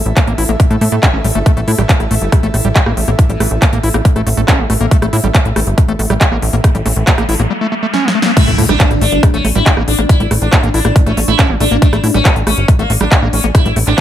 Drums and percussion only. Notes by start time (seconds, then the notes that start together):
0.06 closed hi-hat
0.17 kick, clap, closed hi-hat
0.27 closed hi-hat
0.38 open hi-hat
0.49 closed hi-hat
0.60 kick, closed hi-hat
0.71 closed hi-hat
0.81 open hi-hat
0.92 closed hi-hat
1.03 kick, clap, closed hi-hat
1.25 open hi-hat
1.35 closed hi-hat
1.46 kick, cross-stick, closed hi-hat
1.57 closed hi-hat
1.68 open hi-hat
1.78 cross-stick, closed hi-hat
1.89 kick, clap, closed hi-hat
2.00 cross-stick, closed hi-hat
2.11 open hi-hat
2.22 closed hi-hat
2.32 kick, cross-stick, closed hi-hat
2.43 closed hi-hat
2.54 cross-stick, open hi-hat
2.76 kick, clap, closed hi-hat
2.86 cross-stick
2.97 open hi-hat
3.08 cross-stick, closed hi-hat
3.19 kick, closed hi-hat
3.30 closed hi-hat
3.40 cross-stick, open hi-hat
3.51 closed hi-hat
3.62 kick, cross-stick, clap, closed hi-hat
3.73 closed hi-hat
3.83 open hi-hat
3.94 cross-stick, closed hi-hat
4.05 kick, closed hi-hat
4.16 cross-stick, closed hi-hat
4.27 open hi-hat
4.37 closed hi-hat
4.48 kick, cross-stick, clap, closed hi-hat
4.70 cross-stick, open hi-hat
4.81 closed hi-hat
4.91 kick, closed hi-hat
5.02 cross-stick, closed hi-hat
5.13 open hi-hat
5.24 cross-stick, closed hi-hat
5.35 kick, clap, closed hi-hat
5.45 closed hi-hat
5.56 cross-stick, open hi-hat
5.67 closed hi-hat
5.78 kick, cross-stick, closed hi-hat
5.88 closed hi-hat
5.99 open hi-hat
6.10 cross-stick, closed hi-hat
6.21 kick, clap, closed hi-hat
6.32 cross-stick
6.42 open hi-hat
6.53 closed hi-hat
6.64 kick, cross-stick, closed hi-hat
6.75 closed hi-hat
6.86 cross-stick, open hi-hat
6.96 closed hi-hat
7.07 kick, clap, closed hi-hat
7.18 cross-stick, closed hi-hat
7.29 open hi-hat
7.40 cross-stick, closed hi-hat
7.94 snare
8.08 snare
8.22 snare
8.37 kick, cross-stick, closed hi-hat, crash
8.48 closed hi-hat
8.58 open hi-hat
8.69 cross-stick, closed hi-hat
8.80 kick, clap, closed hi-hat
8.91 cross-stick, closed hi-hat
9.01 open hi-hat
9.12 closed hi-hat
9.23 kick, cross-stick, closed hi-hat
9.34 closed hi-hat
9.45 cross-stick, open hi-hat
9.55 closed hi-hat
9.66 kick, clap, closed hi-hat
9.77 cross-stick
9.88 open hi-hat
9.99 cross-stick
10.09 kick, closed hi-hat
10.20 closed hi-hat
10.31 cross-stick, open hi-hat
10.42 closed hi-hat
10.53 kick, cross-stick, clap, closed hi-hat
10.63 closed hi-hat
10.74 open hi-hat
10.85 cross-stick, closed hi-hat
10.96 kick, closed hi-hat
11.07 cross-stick, closed hi-hat
11.17 open hi-hat
11.28 closed hi-hat
11.39 kick, cross-stick, clap, closed hi-hat
11.60 cross-stick, open hi-hat
11.71 closed hi-hat
11.82 kick, closed hi-hat
11.93 cross-stick, closed hi-hat
12.04 open hi-hat
12.14 cross-stick, closed hi-hat
12.25 kick, clap, closed hi-hat
12.36 closed hi-hat
12.47 cross-stick, open hi-hat
12.58 closed hi-hat
12.68 kick, cross-stick, closed hi-hat
12.79 closed hi-hat
12.90 open hi-hat
13.01 cross-stick, closed hi-hat
13.12 kick, clap, closed hi-hat
13.22 cross-stick
13.33 open hi-hat
13.44 closed hi-hat
13.55 kick, cross-stick, closed hi-hat
13.66 closed hi-hat
13.76 cross-stick, open hi-hat
13.87 clap, closed hi-hat